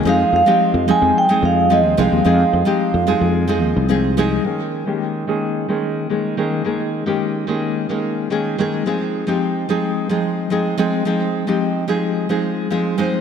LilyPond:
<<
  \new Staff \with { instrumentName = "Vibraphone" } { \time 4/4 \key f \minor \tempo 4 = 109 f''8 f''4 aes''8 g''8 f''8 ees''8 f''8~ | f''2~ f''8 r4. | r1 | r1 |
r1 | r2. r8 c''8 | }
  \new Staff \with { instrumentName = "Nylon-string guitar" } { \time 4/4 \key f \minor <f aes c' ees' aes'>8. <f aes c' ees' g'>8. <f aes c' ees' aes'>8. <f aes c' ees' aes'>8. <f aes c' ees' aes'>8 <f aes c' ees' aes'>8 | <f aes c' ees' aes'>8. <f aes c' ees' g'>8. <f aes c' ees' aes'>8. <f aes c' ees' aes'>8. <f aes c' ees' aes'>8 <f aes c' ees' aes'>8 | <ees aes bes des' aes'>8. <ees aes bes des' g'>8. <ees aes bes des' aes'>8. <ees aes bes des' aes'>8. <ees aes bes des' aes'>8 <ees aes bes des' aes'>8 | <ees aes bes des' aes'>8. <ees aes bes des' g'>8. <ees aes bes des' aes'>8. <ees aes bes des' aes'>8. <ees aes bes des' aes'>8 <ees aes bes des' aes'>8 |
<f aes c' ees' aes'>8. <f aes c' ees' g'>8. <f aes c' ees' aes'>8. <f aes c' ees' aes'>8. <f aes c' ees' aes'>8 <f aes c' ees' aes'>8 | <f aes c' ees' aes'>8. <f aes c' ees' g'>8. <f aes c' ees' aes'>8. <f aes c' ees' aes'>8. <f aes c' ees' aes'>8 <f aes c' ees' aes'>8 | }
  \new Staff \with { instrumentName = "Fretless electric bass" } { \clef bass \time 4/4 \key f \minor f,16 r16 f,16 r8 f,16 r16 f,16 r8 f,8. ees,16 c,16 ees,16 | f,16 r16 f,16 r8 f,16 r16 f,8. ees,16 c,4 r16 | r1 | r1 |
r1 | r1 | }
>>